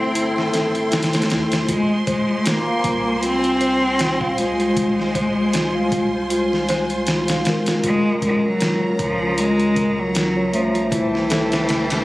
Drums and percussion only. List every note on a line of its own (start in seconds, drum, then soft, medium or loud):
0.15 closed hi-hat medium
0.38 snare soft
0.54 snare medium
0.54 closed hi-hat medium
0.75 closed hi-hat soft
0.92 snare medium
0.92 closed hi-hat medium
1.03 snare medium
1.03 closed hi-hat medium
1.13 snare medium
1.13 closed hi-hat medium
1.22 snare medium
1.22 closed hi-hat medium
1.30 snare loud
1.30 closed hi-hat medium
1.52 snare loud
1.52 closed hi-hat medium
1.69 kick loud
1.69 closed hi-hat loud
2.07 kick loud
2.07 closed hi-hat medium
2.46 snare loud
2.46 closed hi-hat medium
2.84 kick loud
2.84 closed hi-hat medium
3.23 closed hi-hat medium
3.44 closed hi-hat soft
3.61 closed hi-hat medium
3.99 snare loud
3.99 closed hi-hat medium
4.21 kick loud
4.38 closed hi-hat medium
4.60 closed hi-hat soft
4.77 kick loud
4.77 closed hi-hat medium
5.00 snare soft
5.15 kick loud
5.15 closed hi-hat medium
5.53 snare loud
5.53 closed hi-hat medium
5.92 kick medium
5.92 closed hi-hat medium
6.30 closed hi-hat medium
6.53 snare soft
6.69 snare medium
6.69 closed hi-hat medium
6.90 closed hi-hat soft
7.07 snare loud
7.07 closed hi-hat medium
7.28 snare loud
7.28 closed hi-hat medium
7.45 snare loud
7.45 closed hi-hat medium
7.66 snare loud
7.66 closed hi-hat medium
7.84 kick loud
7.84 closed hi-hat medium
8.22 kick loud
8.22 closed hi-hat medium
8.60 snare loud
8.60 closed hi-hat medium
8.99 kick loud
8.99 closed hi-hat medium
9.38 closed hi-hat medium
9.60 closed hi-hat soft
9.76 kick loud
9.76 closed hi-hat medium
10.15 snare loud
10.15 closed hi-hat medium
10.53 closed hi-hat medium
10.75 closed hi-hat soft
10.92 kick loud
10.92 closed hi-hat medium
11.15 snare soft
11.30 snare loud
11.30 closed hi-hat medium
11.52 snare loud
11.52 closed hi-hat medium
11.69 snare loud
11.69 closed hi-hat medium
11.90 snare loud
11.90 closed hi-hat medium